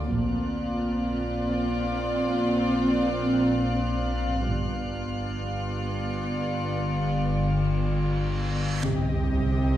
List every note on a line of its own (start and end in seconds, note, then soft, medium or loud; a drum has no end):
0.11 1.16 A#1 medium
0.11 4.48 A#1 medium
0.11 4.44 A#2 soft
0.11 4.44 C4 medium
0.11 4.43 F4 medium
0.11 4.44 D5 medium
0.11 8.25 F6 soft
0.11 7.16 F#6 soft
2.29 6.77 C7 soft
4.47 8.84 G1 medium
4.47 5.53 G1 soft
4.47 8.64 G2 soft
4.47 8.60 B3 soft
4.47 8.60 F4 soft
4.47 8.61 D5 soft
4.47 reverse cymbal soft
6.77 8.25 C#7 soft
8.84 9.77 C2 medium
8.84 9.17 C3 medium
8.84 9.77 C3 soft
8.84 9.77 C4 soft
8.84 9.77 G4 soft
8.84 9.77 D#5 soft
8.84 9.77 G5 soft
8.84 sub drop medium
9.38 9.71 C3 soft